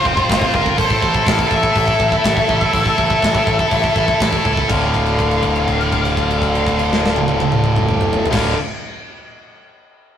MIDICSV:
0, 0, Header, 1, 5, 480
1, 0, Start_track
1, 0, Key_signature, -1, "minor"
1, 0, Tempo, 489396
1, 762, Time_signature, 4, 2, 24, 8
1, 9980, End_track
2, 0, Start_track
2, 0, Title_t, "Lead electric guitar"
2, 0, Program_c, 0, 29
2, 0, Note_on_c, 0, 72, 93
2, 534, Note_on_c, 0, 70, 89
2, 560, Note_off_c, 0, 72, 0
2, 775, Note_off_c, 0, 70, 0
2, 780, Note_on_c, 0, 72, 86
2, 1253, Note_on_c, 0, 77, 95
2, 1264, Note_off_c, 0, 72, 0
2, 1470, Note_off_c, 0, 77, 0
2, 1509, Note_on_c, 0, 76, 95
2, 4094, Note_off_c, 0, 76, 0
2, 4599, Note_on_c, 0, 77, 77
2, 8058, Note_off_c, 0, 77, 0
2, 8168, Note_on_c, 0, 77, 78
2, 8363, Note_off_c, 0, 77, 0
2, 9980, End_track
3, 0, Start_track
3, 0, Title_t, "Distorted electric guitar"
3, 0, Program_c, 1, 30
3, 9, Note_on_c, 1, 65, 76
3, 57, Note_on_c, 1, 60, 68
3, 68, Note_off_c, 1, 65, 0
3, 72, Note_on_c, 1, 65, 80
3, 134, Note_off_c, 1, 60, 0
3, 145, Note_on_c, 1, 60, 61
3, 148, Note_off_c, 1, 65, 0
3, 152, Note_on_c, 1, 65, 72
3, 214, Note_off_c, 1, 60, 0
3, 218, Note_on_c, 1, 60, 67
3, 227, Note_off_c, 1, 65, 0
3, 231, Note_on_c, 1, 65, 77
3, 290, Note_off_c, 1, 60, 0
3, 294, Note_on_c, 1, 60, 62
3, 302, Note_off_c, 1, 65, 0
3, 306, Note_on_c, 1, 65, 69
3, 371, Note_off_c, 1, 60, 0
3, 372, Note_off_c, 1, 65, 0
3, 376, Note_on_c, 1, 60, 70
3, 376, Note_on_c, 1, 65, 75
3, 445, Note_off_c, 1, 60, 0
3, 448, Note_on_c, 1, 60, 55
3, 452, Note_off_c, 1, 65, 0
3, 461, Note_on_c, 1, 65, 66
3, 524, Note_off_c, 1, 60, 0
3, 528, Note_on_c, 1, 60, 65
3, 534, Note_off_c, 1, 65, 0
3, 538, Note_on_c, 1, 65, 73
3, 599, Note_off_c, 1, 60, 0
3, 603, Note_on_c, 1, 60, 53
3, 611, Note_off_c, 1, 65, 0
3, 615, Note_on_c, 1, 65, 66
3, 674, Note_off_c, 1, 60, 0
3, 679, Note_on_c, 1, 60, 65
3, 689, Note_off_c, 1, 65, 0
3, 693, Note_on_c, 1, 65, 70
3, 755, Note_off_c, 1, 60, 0
3, 768, Note_off_c, 1, 65, 0
3, 768, Note_on_c, 1, 64, 77
3, 771, Note_on_c, 1, 69, 80
3, 838, Note_off_c, 1, 69, 0
3, 842, Note_off_c, 1, 64, 0
3, 842, Note_on_c, 1, 69, 55
3, 846, Note_on_c, 1, 64, 53
3, 911, Note_off_c, 1, 64, 0
3, 915, Note_on_c, 1, 64, 60
3, 919, Note_off_c, 1, 69, 0
3, 931, Note_on_c, 1, 69, 70
3, 992, Note_off_c, 1, 64, 0
3, 996, Note_off_c, 1, 69, 0
3, 998, Note_on_c, 1, 64, 54
3, 1000, Note_on_c, 1, 69, 62
3, 1071, Note_off_c, 1, 69, 0
3, 1074, Note_off_c, 1, 64, 0
3, 1075, Note_on_c, 1, 69, 69
3, 1078, Note_on_c, 1, 64, 68
3, 1146, Note_off_c, 1, 64, 0
3, 1150, Note_on_c, 1, 64, 57
3, 1152, Note_off_c, 1, 69, 0
3, 1160, Note_on_c, 1, 69, 65
3, 1216, Note_off_c, 1, 69, 0
3, 1220, Note_on_c, 1, 69, 74
3, 1224, Note_off_c, 1, 64, 0
3, 1228, Note_on_c, 1, 64, 68
3, 1296, Note_off_c, 1, 69, 0
3, 1304, Note_on_c, 1, 69, 62
3, 1305, Note_off_c, 1, 64, 0
3, 1310, Note_on_c, 1, 64, 58
3, 1363, Note_off_c, 1, 64, 0
3, 1367, Note_on_c, 1, 64, 70
3, 1381, Note_off_c, 1, 69, 0
3, 1384, Note_on_c, 1, 69, 73
3, 1443, Note_off_c, 1, 64, 0
3, 1450, Note_on_c, 1, 64, 62
3, 1456, Note_off_c, 1, 69, 0
3, 1460, Note_on_c, 1, 69, 67
3, 1517, Note_off_c, 1, 64, 0
3, 1521, Note_on_c, 1, 64, 75
3, 1532, Note_off_c, 1, 69, 0
3, 1536, Note_on_c, 1, 69, 73
3, 1597, Note_off_c, 1, 64, 0
3, 1600, Note_off_c, 1, 69, 0
3, 1601, Note_on_c, 1, 64, 65
3, 1604, Note_on_c, 1, 69, 67
3, 1676, Note_off_c, 1, 64, 0
3, 1680, Note_off_c, 1, 69, 0
3, 1680, Note_on_c, 1, 64, 68
3, 1693, Note_on_c, 1, 69, 72
3, 1750, Note_off_c, 1, 64, 0
3, 1754, Note_on_c, 1, 64, 62
3, 1767, Note_off_c, 1, 69, 0
3, 1771, Note_on_c, 1, 69, 66
3, 1830, Note_off_c, 1, 64, 0
3, 1837, Note_on_c, 1, 64, 76
3, 1838, Note_off_c, 1, 69, 0
3, 1842, Note_on_c, 1, 69, 71
3, 1899, Note_off_c, 1, 64, 0
3, 1903, Note_on_c, 1, 64, 65
3, 1917, Note_off_c, 1, 69, 0
3, 1921, Note_on_c, 1, 69, 61
3, 1979, Note_off_c, 1, 64, 0
3, 1986, Note_on_c, 1, 64, 71
3, 1989, Note_off_c, 1, 69, 0
3, 1993, Note_on_c, 1, 69, 69
3, 2057, Note_off_c, 1, 64, 0
3, 2061, Note_off_c, 1, 69, 0
3, 2061, Note_on_c, 1, 64, 62
3, 2065, Note_on_c, 1, 69, 66
3, 2137, Note_off_c, 1, 64, 0
3, 2141, Note_off_c, 1, 69, 0
3, 2144, Note_on_c, 1, 64, 68
3, 2153, Note_on_c, 1, 69, 72
3, 2217, Note_off_c, 1, 64, 0
3, 2218, Note_off_c, 1, 69, 0
3, 2221, Note_on_c, 1, 64, 56
3, 2222, Note_on_c, 1, 69, 63
3, 2290, Note_off_c, 1, 69, 0
3, 2292, Note_off_c, 1, 64, 0
3, 2294, Note_on_c, 1, 69, 75
3, 2296, Note_on_c, 1, 64, 72
3, 2362, Note_off_c, 1, 64, 0
3, 2366, Note_on_c, 1, 64, 56
3, 2370, Note_off_c, 1, 69, 0
3, 2380, Note_on_c, 1, 69, 60
3, 2441, Note_off_c, 1, 64, 0
3, 2445, Note_on_c, 1, 64, 60
3, 2454, Note_off_c, 1, 69, 0
3, 2458, Note_on_c, 1, 69, 72
3, 2521, Note_off_c, 1, 64, 0
3, 2528, Note_off_c, 1, 69, 0
3, 2530, Note_on_c, 1, 64, 54
3, 2532, Note_on_c, 1, 69, 57
3, 2596, Note_off_c, 1, 64, 0
3, 2600, Note_on_c, 1, 64, 60
3, 2602, Note_off_c, 1, 69, 0
3, 2606, Note_on_c, 1, 69, 62
3, 2677, Note_off_c, 1, 64, 0
3, 2683, Note_off_c, 1, 69, 0
3, 2688, Note_on_c, 1, 64, 78
3, 2698, Note_on_c, 1, 69, 84
3, 2751, Note_off_c, 1, 64, 0
3, 2755, Note_on_c, 1, 64, 55
3, 2773, Note_off_c, 1, 69, 0
3, 2777, Note_on_c, 1, 69, 65
3, 2831, Note_off_c, 1, 64, 0
3, 2836, Note_off_c, 1, 69, 0
3, 2840, Note_on_c, 1, 69, 74
3, 2846, Note_on_c, 1, 64, 63
3, 2915, Note_off_c, 1, 64, 0
3, 2917, Note_off_c, 1, 69, 0
3, 2919, Note_on_c, 1, 64, 57
3, 2932, Note_on_c, 1, 69, 66
3, 2991, Note_off_c, 1, 64, 0
3, 2995, Note_off_c, 1, 69, 0
3, 2995, Note_on_c, 1, 64, 67
3, 2999, Note_on_c, 1, 69, 71
3, 3062, Note_off_c, 1, 64, 0
3, 3066, Note_on_c, 1, 64, 60
3, 3075, Note_off_c, 1, 69, 0
3, 3084, Note_on_c, 1, 69, 68
3, 3139, Note_off_c, 1, 64, 0
3, 3142, Note_on_c, 1, 64, 67
3, 3153, Note_off_c, 1, 69, 0
3, 3157, Note_on_c, 1, 69, 75
3, 3219, Note_off_c, 1, 64, 0
3, 3223, Note_on_c, 1, 64, 57
3, 3231, Note_off_c, 1, 69, 0
3, 3235, Note_on_c, 1, 69, 67
3, 3300, Note_off_c, 1, 64, 0
3, 3307, Note_on_c, 1, 64, 69
3, 3309, Note_off_c, 1, 69, 0
3, 3313, Note_on_c, 1, 69, 83
3, 3374, Note_off_c, 1, 64, 0
3, 3374, Note_off_c, 1, 69, 0
3, 3378, Note_on_c, 1, 64, 58
3, 3378, Note_on_c, 1, 69, 67
3, 3447, Note_off_c, 1, 64, 0
3, 3451, Note_on_c, 1, 64, 68
3, 3455, Note_off_c, 1, 69, 0
3, 3468, Note_on_c, 1, 69, 75
3, 3527, Note_off_c, 1, 64, 0
3, 3531, Note_off_c, 1, 69, 0
3, 3535, Note_on_c, 1, 69, 73
3, 3538, Note_on_c, 1, 64, 61
3, 3612, Note_off_c, 1, 64, 0
3, 3612, Note_off_c, 1, 69, 0
3, 3616, Note_on_c, 1, 64, 70
3, 3622, Note_on_c, 1, 69, 84
3, 3679, Note_off_c, 1, 64, 0
3, 3682, Note_off_c, 1, 69, 0
3, 3683, Note_on_c, 1, 64, 63
3, 3686, Note_on_c, 1, 69, 70
3, 3759, Note_off_c, 1, 64, 0
3, 3763, Note_off_c, 1, 69, 0
3, 3768, Note_on_c, 1, 64, 70
3, 3771, Note_on_c, 1, 69, 83
3, 3837, Note_off_c, 1, 64, 0
3, 3841, Note_on_c, 1, 64, 60
3, 3847, Note_off_c, 1, 69, 0
3, 3852, Note_on_c, 1, 69, 73
3, 3912, Note_off_c, 1, 69, 0
3, 3916, Note_on_c, 1, 69, 81
3, 3918, Note_off_c, 1, 64, 0
3, 3923, Note_on_c, 1, 64, 74
3, 3991, Note_off_c, 1, 64, 0
3, 3993, Note_off_c, 1, 69, 0
3, 3995, Note_on_c, 1, 64, 59
3, 3998, Note_on_c, 1, 69, 72
3, 4061, Note_off_c, 1, 64, 0
3, 4065, Note_on_c, 1, 64, 68
3, 4072, Note_off_c, 1, 69, 0
3, 4076, Note_on_c, 1, 69, 81
3, 4138, Note_off_c, 1, 64, 0
3, 4140, Note_off_c, 1, 69, 0
3, 4142, Note_on_c, 1, 64, 58
3, 4144, Note_on_c, 1, 69, 68
3, 4201, Note_off_c, 1, 69, 0
3, 4205, Note_on_c, 1, 69, 78
3, 4207, Note_off_c, 1, 64, 0
3, 4210, Note_on_c, 1, 64, 65
3, 4281, Note_off_c, 1, 69, 0
3, 4287, Note_off_c, 1, 64, 0
3, 4292, Note_on_c, 1, 64, 59
3, 4296, Note_on_c, 1, 69, 60
3, 4368, Note_off_c, 1, 64, 0
3, 4372, Note_off_c, 1, 69, 0
3, 4373, Note_on_c, 1, 64, 65
3, 4381, Note_on_c, 1, 69, 76
3, 4443, Note_off_c, 1, 69, 0
3, 4444, Note_off_c, 1, 64, 0
3, 4447, Note_on_c, 1, 69, 60
3, 4448, Note_on_c, 1, 64, 53
3, 4523, Note_off_c, 1, 69, 0
3, 4524, Note_off_c, 1, 64, 0
3, 4530, Note_on_c, 1, 69, 65
3, 4535, Note_on_c, 1, 64, 64
3, 4577, Note_on_c, 1, 38, 97
3, 4594, Note_on_c, 1, 45, 94
3, 4606, Note_off_c, 1, 69, 0
3, 4611, Note_off_c, 1, 64, 0
3, 4619, Note_on_c, 1, 50, 108
3, 8087, Note_off_c, 1, 38, 0
3, 8095, Note_off_c, 1, 45, 0
3, 8108, Note_off_c, 1, 50, 0
3, 8142, Note_on_c, 1, 38, 83
3, 8168, Note_on_c, 1, 45, 92
3, 8176, Note_on_c, 1, 50, 108
3, 8365, Note_off_c, 1, 38, 0
3, 8378, Note_off_c, 1, 45, 0
3, 8382, Note_off_c, 1, 50, 0
3, 9980, End_track
4, 0, Start_track
4, 0, Title_t, "Picked electric bass"
4, 0, Program_c, 2, 34
4, 50, Note_on_c, 2, 29, 88
4, 196, Note_off_c, 2, 29, 0
4, 292, Note_on_c, 2, 29, 92
4, 438, Note_off_c, 2, 29, 0
4, 529, Note_on_c, 2, 31, 86
4, 769, Note_off_c, 2, 31, 0
4, 769, Note_on_c, 2, 33, 93
4, 915, Note_off_c, 2, 33, 0
4, 1004, Note_on_c, 2, 33, 88
4, 1152, Note_off_c, 2, 33, 0
4, 1240, Note_on_c, 2, 33, 92
4, 1389, Note_off_c, 2, 33, 0
4, 1481, Note_on_c, 2, 33, 84
4, 1630, Note_off_c, 2, 33, 0
4, 1722, Note_on_c, 2, 33, 94
4, 1870, Note_off_c, 2, 33, 0
4, 1965, Note_on_c, 2, 33, 83
4, 2112, Note_off_c, 2, 33, 0
4, 2205, Note_on_c, 2, 33, 94
4, 2352, Note_off_c, 2, 33, 0
4, 2446, Note_on_c, 2, 33, 82
4, 2592, Note_off_c, 2, 33, 0
4, 2683, Note_on_c, 2, 33, 92
4, 2831, Note_off_c, 2, 33, 0
4, 2926, Note_on_c, 2, 33, 87
4, 3073, Note_off_c, 2, 33, 0
4, 3163, Note_on_c, 2, 33, 90
4, 3311, Note_off_c, 2, 33, 0
4, 3400, Note_on_c, 2, 33, 88
4, 3549, Note_off_c, 2, 33, 0
4, 3642, Note_on_c, 2, 33, 92
4, 3790, Note_off_c, 2, 33, 0
4, 3881, Note_on_c, 2, 33, 85
4, 4029, Note_off_c, 2, 33, 0
4, 4128, Note_on_c, 2, 33, 85
4, 4274, Note_off_c, 2, 33, 0
4, 4369, Note_on_c, 2, 37, 77
4, 4515, Note_off_c, 2, 37, 0
4, 4606, Note_on_c, 2, 26, 91
4, 8062, Note_off_c, 2, 26, 0
4, 8167, Note_on_c, 2, 26, 96
4, 8363, Note_off_c, 2, 26, 0
4, 9980, End_track
5, 0, Start_track
5, 0, Title_t, "Drums"
5, 51, Note_on_c, 9, 36, 86
5, 149, Note_off_c, 9, 36, 0
5, 169, Note_on_c, 9, 36, 82
5, 267, Note_off_c, 9, 36, 0
5, 290, Note_on_c, 9, 36, 87
5, 301, Note_on_c, 9, 46, 56
5, 312, Note_on_c, 9, 38, 113
5, 388, Note_off_c, 9, 36, 0
5, 399, Note_off_c, 9, 46, 0
5, 408, Note_on_c, 9, 36, 79
5, 410, Note_off_c, 9, 38, 0
5, 506, Note_off_c, 9, 36, 0
5, 528, Note_on_c, 9, 36, 85
5, 626, Note_off_c, 9, 36, 0
5, 648, Note_on_c, 9, 36, 80
5, 746, Note_off_c, 9, 36, 0
5, 768, Note_on_c, 9, 36, 90
5, 780, Note_on_c, 9, 46, 59
5, 866, Note_off_c, 9, 36, 0
5, 878, Note_off_c, 9, 46, 0
5, 886, Note_on_c, 9, 36, 90
5, 984, Note_off_c, 9, 36, 0
5, 1005, Note_on_c, 9, 36, 87
5, 1103, Note_off_c, 9, 36, 0
5, 1123, Note_on_c, 9, 36, 85
5, 1221, Note_off_c, 9, 36, 0
5, 1242, Note_on_c, 9, 36, 93
5, 1245, Note_on_c, 9, 46, 65
5, 1257, Note_on_c, 9, 38, 114
5, 1340, Note_off_c, 9, 36, 0
5, 1343, Note_off_c, 9, 46, 0
5, 1355, Note_off_c, 9, 38, 0
5, 1362, Note_on_c, 9, 36, 85
5, 1460, Note_off_c, 9, 36, 0
5, 1480, Note_on_c, 9, 36, 88
5, 1578, Note_off_c, 9, 36, 0
5, 1600, Note_on_c, 9, 36, 75
5, 1699, Note_off_c, 9, 36, 0
5, 1723, Note_on_c, 9, 36, 81
5, 1725, Note_on_c, 9, 46, 55
5, 1821, Note_off_c, 9, 36, 0
5, 1823, Note_off_c, 9, 46, 0
5, 1841, Note_on_c, 9, 36, 79
5, 1939, Note_off_c, 9, 36, 0
5, 1960, Note_on_c, 9, 36, 76
5, 2058, Note_off_c, 9, 36, 0
5, 2080, Note_on_c, 9, 36, 79
5, 2178, Note_off_c, 9, 36, 0
5, 2200, Note_on_c, 9, 46, 52
5, 2201, Note_on_c, 9, 36, 80
5, 2212, Note_on_c, 9, 38, 111
5, 2298, Note_off_c, 9, 46, 0
5, 2299, Note_off_c, 9, 36, 0
5, 2310, Note_off_c, 9, 38, 0
5, 2322, Note_on_c, 9, 36, 77
5, 2420, Note_off_c, 9, 36, 0
5, 2442, Note_on_c, 9, 36, 82
5, 2540, Note_off_c, 9, 36, 0
5, 2562, Note_on_c, 9, 36, 80
5, 2660, Note_off_c, 9, 36, 0
5, 2681, Note_on_c, 9, 36, 86
5, 2685, Note_on_c, 9, 46, 56
5, 2779, Note_off_c, 9, 36, 0
5, 2783, Note_off_c, 9, 46, 0
5, 2802, Note_on_c, 9, 36, 90
5, 2900, Note_off_c, 9, 36, 0
5, 2924, Note_on_c, 9, 36, 85
5, 3022, Note_off_c, 9, 36, 0
5, 3043, Note_on_c, 9, 36, 84
5, 3141, Note_off_c, 9, 36, 0
5, 3163, Note_on_c, 9, 36, 89
5, 3170, Note_on_c, 9, 46, 55
5, 3182, Note_on_c, 9, 38, 115
5, 3261, Note_off_c, 9, 36, 0
5, 3268, Note_off_c, 9, 46, 0
5, 3280, Note_off_c, 9, 38, 0
5, 3283, Note_on_c, 9, 36, 88
5, 3381, Note_off_c, 9, 36, 0
5, 3403, Note_on_c, 9, 36, 91
5, 3502, Note_off_c, 9, 36, 0
5, 3523, Note_on_c, 9, 36, 78
5, 3621, Note_off_c, 9, 36, 0
5, 3643, Note_on_c, 9, 36, 79
5, 3643, Note_on_c, 9, 46, 50
5, 3741, Note_off_c, 9, 36, 0
5, 3742, Note_off_c, 9, 46, 0
5, 3764, Note_on_c, 9, 36, 79
5, 3862, Note_off_c, 9, 36, 0
5, 3883, Note_on_c, 9, 36, 78
5, 3981, Note_off_c, 9, 36, 0
5, 4002, Note_on_c, 9, 36, 80
5, 4101, Note_off_c, 9, 36, 0
5, 4124, Note_on_c, 9, 36, 82
5, 4125, Note_on_c, 9, 46, 55
5, 4137, Note_on_c, 9, 38, 107
5, 4222, Note_off_c, 9, 36, 0
5, 4223, Note_off_c, 9, 46, 0
5, 4235, Note_off_c, 9, 38, 0
5, 4243, Note_on_c, 9, 36, 81
5, 4341, Note_off_c, 9, 36, 0
5, 4365, Note_on_c, 9, 36, 81
5, 4463, Note_off_c, 9, 36, 0
5, 4485, Note_on_c, 9, 36, 81
5, 4583, Note_off_c, 9, 36, 0
5, 4606, Note_on_c, 9, 36, 107
5, 4606, Note_on_c, 9, 49, 85
5, 4704, Note_off_c, 9, 36, 0
5, 4704, Note_off_c, 9, 49, 0
5, 4847, Note_on_c, 9, 36, 65
5, 4852, Note_on_c, 9, 49, 43
5, 4945, Note_off_c, 9, 36, 0
5, 4950, Note_off_c, 9, 49, 0
5, 4966, Note_on_c, 9, 57, 43
5, 5064, Note_off_c, 9, 57, 0
5, 5088, Note_on_c, 9, 36, 66
5, 5096, Note_on_c, 9, 49, 45
5, 5186, Note_off_c, 9, 36, 0
5, 5194, Note_off_c, 9, 49, 0
5, 5209, Note_on_c, 9, 57, 44
5, 5307, Note_off_c, 9, 57, 0
5, 5320, Note_on_c, 9, 49, 46
5, 5326, Note_on_c, 9, 36, 69
5, 5418, Note_off_c, 9, 49, 0
5, 5424, Note_off_c, 9, 36, 0
5, 5448, Note_on_c, 9, 57, 46
5, 5546, Note_off_c, 9, 57, 0
5, 5569, Note_on_c, 9, 36, 58
5, 5569, Note_on_c, 9, 49, 43
5, 5667, Note_off_c, 9, 36, 0
5, 5667, Note_off_c, 9, 49, 0
5, 5695, Note_on_c, 9, 57, 47
5, 5793, Note_off_c, 9, 57, 0
5, 5810, Note_on_c, 9, 36, 63
5, 5810, Note_on_c, 9, 49, 47
5, 5908, Note_off_c, 9, 49, 0
5, 5909, Note_off_c, 9, 36, 0
5, 5934, Note_on_c, 9, 57, 51
5, 6032, Note_off_c, 9, 57, 0
5, 6053, Note_on_c, 9, 36, 59
5, 6055, Note_on_c, 9, 49, 48
5, 6151, Note_off_c, 9, 36, 0
5, 6153, Note_off_c, 9, 49, 0
5, 6184, Note_on_c, 9, 57, 49
5, 6282, Note_off_c, 9, 57, 0
5, 6295, Note_on_c, 9, 36, 57
5, 6303, Note_on_c, 9, 49, 47
5, 6393, Note_off_c, 9, 36, 0
5, 6401, Note_off_c, 9, 49, 0
5, 6425, Note_on_c, 9, 57, 51
5, 6523, Note_off_c, 9, 57, 0
5, 6538, Note_on_c, 9, 36, 64
5, 6548, Note_on_c, 9, 49, 51
5, 6636, Note_off_c, 9, 36, 0
5, 6646, Note_off_c, 9, 49, 0
5, 6661, Note_on_c, 9, 57, 56
5, 6759, Note_off_c, 9, 57, 0
5, 6796, Note_on_c, 9, 38, 87
5, 6894, Note_off_c, 9, 38, 0
5, 6920, Note_on_c, 9, 38, 88
5, 7018, Note_off_c, 9, 38, 0
5, 7024, Note_on_c, 9, 48, 98
5, 7122, Note_off_c, 9, 48, 0
5, 7141, Note_on_c, 9, 48, 97
5, 7239, Note_off_c, 9, 48, 0
5, 7260, Note_on_c, 9, 48, 101
5, 7358, Note_off_c, 9, 48, 0
5, 7374, Note_on_c, 9, 47, 95
5, 7472, Note_off_c, 9, 47, 0
5, 7491, Note_on_c, 9, 47, 82
5, 7589, Note_off_c, 9, 47, 0
5, 7614, Note_on_c, 9, 45, 102
5, 7712, Note_off_c, 9, 45, 0
5, 7735, Note_on_c, 9, 45, 95
5, 7833, Note_off_c, 9, 45, 0
5, 7855, Note_on_c, 9, 45, 100
5, 7953, Note_off_c, 9, 45, 0
5, 7973, Note_on_c, 9, 43, 100
5, 8072, Note_off_c, 9, 43, 0
5, 8097, Note_on_c, 9, 43, 101
5, 8167, Note_on_c, 9, 36, 107
5, 8169, Note_on_c, 9, 49, 102
5, 8180, Note_on_c, 9, 38, 100
5, 8195, Note_off_c, 9, 43, 0
5, 8265, Note_off_c, 9, 36, 0
5, 8267, Note_off_c, 9, 49, 0
5, 8279, Note_off_c, 9, 38, 0
5, 9980, End_track
0, 0, End_of_file